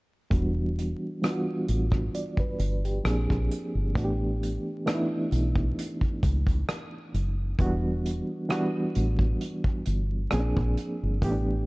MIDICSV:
0, 0, Header, 1, 4, 480
1, 0, Start_track
1, 0, Tempo, 909091
1, 166, Time_signature, 4, 2, 24, 8
1, 6157, End_track
2, 0, Start_track
2, 0, Title_t, "Reed electric piano"
2, 0, Program_c, 0, 4
2, 161, Note_on_c, 0, 52, 71
2, 165, Note_on_c, 0, 55, 65
2, 167, Note_on_c, 0, 59, 59
2, 171, Note_on_c, 0, 62, 62
2, 175, Note_on_c, 0, 66, 76
2, 276, Control_c, 0, 64, 127
2, 553, Note_off_c, 0, 52, 0
2, 555, Note_off_c, 0, 55, 0
2, 556, Note_off_c, 0, 59, 0
2, 558, Note_off_c, 0, 62, 0
2, 560, Note_off_c, 0, 66, 0
2, 644, Note_on_c, 0, 52, 65
2, 647, Note_on_c, 0, 55, 59
2, 650, Note_on_c, 0, 59, 64
2, 653, Note_on_c, 0, 62, 57
2, 656, Note_on_c, 0, 65, 61
2, 689, Note_off_c, 0, 65, 0
2, 691, Note_on_c, 0, 66, 83
2, 1134, Note_on_c, 0, 74, 47
2, 1149, Note_off_c, 0, 66, 0
2, 1255, Note_off_c, 0, 74, 0
2, 1265, Note_on_c, 0, 71, 54
2, 1408, Note_off_c, 0, 52, 0
2, 1409, Note_off_c, 0, 55, 0
2, 1411, Note_off_c, 0, 59, 0
2, 1412, Note_off_c, 0, 62, 0
2, 1490, Note_off_c, 0, 71, 0
2, 1505, Note_on_c, 0, 67, 58
2, 1603, Note_on_c, 0, 53, 66
2, 1609, Note_on_c, 0, 58, 55
2, 1613, Control_c, 0, 64, 0
2, 1613, Note_on_c, 0, 60, 65
2, 1613, Note_on_c, 0, 62, 59
2, 1619, Note_on_c, 0, 68, 72
2, 1693, Control_c, 0, 64, 127
2, 1729, Note_off_c, 0, 67, 0
2, 1998, Note_off_c, 0, 53, 0
2, 2001, Note_off_c, 0, 58, 0
2, 2003, Note_off_c, 0, 60, 0
2, 2003, Note_off_c, 0, 62, 0
2, 2006, Note_off_c, 0, 68, 0
2, 2085, Note_on_c, 0, 52, 73
2, 2089, Note_on_c, 0, 57, 68
2, 2092, Note_on_c, 0, 59, 63
2, 2094, Control_c, 0, 64, 0
2, 2096, Note_on_c, 0, 62, 67
2, 2100, Note_on_c, 0, 66, 65
2, 2131, Note_off_c, 0, 66, 0
2, 2134, Note_on_c, 0, 67, 75
2, 2195, Control_c, 0, 64, 127
2, 2475, Note_off_c, 0, 52, 0
2, 2476, Note_off_c, 0, 57, 0
2, 2478, Note_off_c, 0, 59, 0
2, 2480, Note_off_c, 0, 62, 0
2, 2499, Note_off_c, 0, 67, 0
2, 2564, Note_on_c, 0, 52, 65
2, 2567, Note_on_c, 0, 57, 67
2, 2571, Note_on_c, 0, 59, 66
2, 2574, Note_on_c, 0, 62, 71
2, 2577, Note_on_c, 0, 63, 66
2, 2609, Note_off_c, 0, 63, 0
2, 2611, Note_on_c, 0, 64, 73
2, 3328, Note_off_c, 0, 52, 0
2, 3329, Note_off_c, 0, 57, 0
2, 3331, Note_off_c, 0, 59, 0
2, 3333, Note_off_c, 0, 62, 0
2, 3351, Note_off_c, 0, 64, 0
2, 4005, Note_on_c, 0, 52, 71
2, 4010, Note_on_c, 0, 55, 71
2, 4013, Control_c, 0, 64, 0
2, 4013, Note_on_c, 0, 59, 74
2, 4017, Note_on_c, 0, 62, 65
2, 4021, Note_on_c, 0, 66, 82
2, 4112, Control_c, 0, 64, 127
2, 4395, Note_off_c, 0, 52, 0
2, 4397, Note_off_c, 0, 55, 0
2, 4399, Note_off_c, 0, 59, 0
2, 4401, Note_off_c, 0, 62, 0
2, 4403, Note_off_c, 0, 66, 0
2, 4483, Note_on_c, 0, 52, 73
2, 4486, Note_on_c, 0, 55, 69
2, 4489, Note_on_c, 0, 59, 72
2, 4493, Note_on_c, 0, 62, 68
2, 4496, Note_on_c, 0, 66, 84
2, 5247, Note_off_c, 0, 52, 0
2, 5249, Note_off_c, 0, 55, 0
2, 5250, Note_off_c, 0, 59, 0
2, 5252, Note_off_c, 0, 62, 0
2, 5254, Note_off_c, 0, 66, 0
2, 5446, Note_on_c, 0, 53, 70
2, 5447, Note_on_c, 0, 58, 70
2, 5451, Note_on_c, 0, 60, 65
2, 5454, Control_c, 0, 64, 0
2, 5454, Note_on_c, 0, 61, 53
2, 5458, Note_on_c, 0, 68, 81
2, 5488, Note_off_c, 0, 61, 0
2, 5489, Note_on_c, 0, 62, 68
2, 5559, Control_c, 0, 64, 127
2, 5839, Note_off_c, 0, 53, 0
2, 5840, Note_off_c, 0, 58, 0
2, 5842, Note_off_c, 0, 60, 0
2, 5845, Note_off_c, 0, 68, 0
2, 5861, Note_off_c, 0, 62, 0
2, 5924, Note_on_c, 0, 52, 75
2, 5925, Note_on_c, 0, 57, 69
2, 5929, Note_on_c, 0, 59, 71
2, 5934, Control_c, 0, 64, 0
2, 5934, Note_on_c, 0, 61, 53
2, 5937, Note_on_c, 0, 67, 83
2, 5968, Note_off_c, 0, 61, 0
2, 5969, Note_on_c, 0, 62, 68
2, 6023, Control_c, 0, 64, 127
2, 6157, Note_off_c, 0, 52, 0
2, 6157, Note_off_c, 0, 57, 0
2, 6157, Note_off_c, 0, 59, 0
2, 6157, Note_off_c, 0, 62, 0
2, 6157, Note_off_c, 0, 67, 0
2, 6157, End_track
3, 0, Start_track
3, 0, Title_t, "Fingered electric bass"
3, 0, Program_c, 1, 33
3, 168, Note_on_c, 1, 28, 77
3, 491, Note_off_c, 1, 28, 0
3, 891, Note_on_c, 1, 33, 70
3, 1098, Note_off_c, 1, 33, 0
3, 1369, Note_on_c, 1, 31, 78
3, 1577, Note_off_c, 1, 31, 0
3, 1608, Note_on_c, 1, 34, 73
3, 1722, Note_off_c, 1, 34, 0
3, 1747, Note_on_c, 1, 34, 72
3, 1837, Note_off_c, 1, 34, 0
3, 1979, Note_on_c, 1, 31, 73
3, 2073, Note_off_c, 1, 31, 0
3, 2090, Note_on_c, 1, 33, 76
3, 2412, Note_off_c, 1, 33, 0
3, 2809, Note_on_c, 1, 35, 77
3, 3017, Note_off_c, 1, 35, 0
3, 3292, Note_on_c, 1, 37, 76
3, 3498, Note_off_c, 1, 37, 0
3, 3770, Note_on_c, 1, 30, 79
3, 3977, Note_off_c, 1, 30, 0
3, 4011, Note_on_c, 1, 28, 83
3, 4332, Note_off_c, 1, 28, 0
3, 4733, Note_on_c, 1, 33, 82
3, 4939, Note_off_c, 1, 33, 0
3, 5210, Note_on_c, 1, 31, 73
3, 5417, Note_off_c, 1, 31, 0
3, 5453, Note_on_c, 1, 34, 86
3, 5564, Note_off_c, 1, 34, 0
3, 5582, Note_on_c, 1, 34, 83
3, 5675, Note_off_c, 1, 34, 0
3, 5824, Note_on_c, 1, 31, 70
3, 5916, Note_off_c, 1, 31, 0
3, 5926, Note_on_c, 1, 33, 85
3, 6157, Note_off_c, 1, 33, 0
3, 6157, End_track
4, 0, Start_track
4, 0, Title_t, "Drums"
4, 164, Note_on_c, 9, 36, 87
4, 169, Note_on_c, 9, 42, 62
4, 217, Note_off_c, 9, 36, 0
4, 222, Note_off_c, 9, 42, 0
4, 416, Note_on_c, 9, 42, 51
4, 468, Note_off_c, 9, 42, 0
4, 653, Note_on_c, 9, 42, 67
4, 655, Note_on_c, 9, 37, 74
4, 705, Note_off_c, 9, 42, 0
4, 708, Note_off_c, 9, 37, 0
4, 890, Note_on_c, 9, 42, 58
4, 942, Note_off_c, 9, 42, 0
4, 1013, Note_on_c, 9, 36, 81
4, 1020, Note_on_c, 9, 37, 29
4, 1065, Note_off_c, 9, 36, 0
4, 1073, Note_off_c, 9, 37, 0
4, 1133, Note_on_c, 9, 42, 68
4, 1186, Note_off_c, 9, 42, 0
4, 1253, Note_on_c, 9, 36, 68
4, 1306, Note_off_c, 9, 36, 0
4, 1370, Note_on_c, 9, 42, 57
4, 1423, Note_off_c, 9, 42, 0
4, 1504, Note_on_c, 9, 42, 37
4, 1557, Note_off_c, 9, 42, 0
4, 1610, Note_on_c, 9, 37, 80
4, 1615, Note_on_c, 9, 42, 60
4, 1663, Note_off_c, 9, 37, 0
4, 1668, Note_off_c, 9, 42, 0
4, 1743, Note_on_c, 9, 36, 66
4, 1747, Note_on_c, 9, 37, 28
4, 1796, Note_off_c, 9, 36, 0
4, 1800, Note_off_c, 9, 37, 0
4, 1855, Note_on_c, 9, 42, 59
4, 1908, Note_off_c, 9, 42, 0
4, 2088, Note_on_c, 9, 36, 95
4, 2097, Note_on_c, 9, 42, 62
4, 2140, Note_off_c, 9, 36, 0
4, 2150, Note_off_c, 9, 42, 0
4, 2340, Note_on_c, 9, 42, 55
4, 2393, Note_off_c, 9, 42, 0
4, 2572, Note_on_c, 9, 42, 65
4, 2575, Note_on_c, 9, 37, 82
4, 2625, Note_off_c, 9, 42, 0
4, 2628, Note_off_c, 9, 37, 0
4, 2810, Note_on_c, 9, 42, 61
4, 2863, Note_off_c, 9, 42, 0
4, 2933, Note_on_c, 9, 36, 79
4, 2986, Note_off_c, 9, 36, 0
4, 3056, Note_on_c, 9, 42, 74
4, 3109, Note_off_c, 9, 42, 0
4, 3175, Note_on_c, 9, 36, 67
4, 3227, Note_off_c, 9, 36, 0
4, 3289, Note_on_c, 9, 36, 82
4, 3291, Note_on_c, 9, 42, 60
4, 3342, Note_off_c, 9, 36, 0
4, 3344, Note_off_c, 9, 42, 0
4, 3414, Note_on_c, 9, 36, 74
4, 3423, Note_on_c, 9, 42, 42
4, 3467, Note_off_c, 9, 36, 0
4, 3476, Note_off_c, 9, 42, 0
4, 3531, Note_on_c, 9, 37, 91
4, 3535, Note_on_c, 9, 42, 60
4, 3583, Note_off_c, 9, 37, 0
4, 3588, Note_off_c, 9, 42, 0
4, 3773, Note_on_c, 9, 42, 56
4, 3826, Note_off_c, 9, 42, 0
4, 4006, Note_on_c, 9, 36, 82
4, 4012, Note_on_c, 9, 42, 60
4, 4059, Note_off_c, 9, 36, 0
4, 4065, Note_off_c, 9, 42, 0
4, 4254, Note_on_c, 9, 42, 57
4, 4307, Note_off_c, 9, 42, 0
4, 4488, Note_on_c, 9, 42, 62
4, 4491, Note_on_c, 9, 37, 83
4, 4541, Note_off_c, 9, 42, 0
4, 4543, Note_off_c, 9, 37, 0
4, 4727, Note_on_c, 9, 42, 65
4, 4780, Note_off_c, 9, 42, 0
4, 4852, Note_on_c, 9, 36, 82
4, 4904, Note_off_c, 9, 36, 0
4, 4968, Note_on_c, 9, 42, 75
4, 5021, Note_off_c, 9, 42, 0
4, 5091, Note_on_c, 9, 36, 75
4, 5144, Note_off_c, 9, 36, 0
4, 5204, Note_on_c, 9, 42, 63
4, 5257, Note_off_c, 9, 42, 0
4, 5442, Note_on_c, 9, 37, 89
4, 5447, Note_on_c, 9, 42, 68
4, 5495, Note_off_c, 9, 37, 0
4, 5499, Note_off_c, 9, 42, 0
4, 5579, Note_on_c, 9, 36, 72
4, 5632, Note_off_c, 9, 36, 0
4, 5689, Note_on_c, 9, 42, 55
4, 5742, Note_off_c, 9, 42, 0
4, 5924, Note_on_c, 9, 36, 91
4, 5928, Note_on_c, 9, 42, 65
4, 5977, Note_off_c, 9, 36, 0
4, 5981, Note_off_c, 9, 42, 0
4, 6157, End_track
0, 0, End_of_file